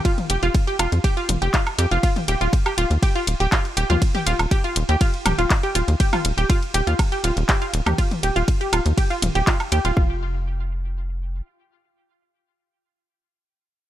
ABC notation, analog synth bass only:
X:1
M:4/4
L:1/16
Q:1/4=121
K:Ebmix
V:1 name="Analog synth bass" clef=bass
z2 F,,, F,,, z2 F,,, F,, z2 F,,, F,,, z2 F,, F,,, | z2 E,,, E,,, z2 E,,, E,, z2 E,,, E,,, z2 E,,, E,, | z2 E,,, E,,, z2 E,,, E,, z2 E,,, E,,, z2 E,,, E,, | z2 E,,, E,,, z2 E,,, E,, z2 E,,, E,,, z2 E,,, E,, |
z2 E,,, E,,, z2 E,,, E,, z2 E,,, E,,, z2 E,, E,,, | F,,,12 z4 | z16 |]